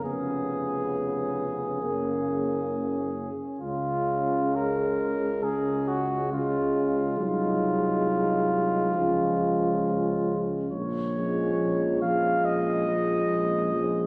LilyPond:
<<
  \new Staff \with { instrumentName = "Cornet" } { \time 4/4 \key cis \mixolydian \tempo 4 = 68 gis'2.~ gis'8 r8 | eis'4 ais'4 gis'8 fis'8 eis'4 | eis'2.~ eis'8 r8 | \key bes \minor des''4. f''8 ees''2 | }
  \new Staff \with { instrumentName = "French horn section" } { \time 4/4 \key cis \mixolydian cis'2 cis'2 | cis'2 cis'4 cis'4 | dis'2 cis'2 | \key bes \minor r8 des'4 des'4 des'4 des'8 | }
  \new Staff \with { instrumentName = "Euphonium" } { \clef bass \time 4/4 \key cis \mixolydian b2 ais4. r8 | gis2 gis4 gis4 | gis2 gis2 | \key bes \minor r8 aes4 aes4 aes4 aes8 | }
  \new Staff \with { instrumentName = "Euphonium" } { \clef bass \time 4/4 \key cis \mixolydian cis2 cis4. r8 | cis2 cis4 cis4 | fis2 eis2 | \key bes \minor r8 f4 f4 f4 f8 | }
  \new Staff \with { instrumentName = "Tuba" } { \clef bass \time 4/4 \key cis \mixolydian eis,,2 fis,,4. r8 | cis,1 | bis,,2 cis,2 | \key bes \minor bes,,4 bes,,4 bes,,4 bes,,4 | }
>>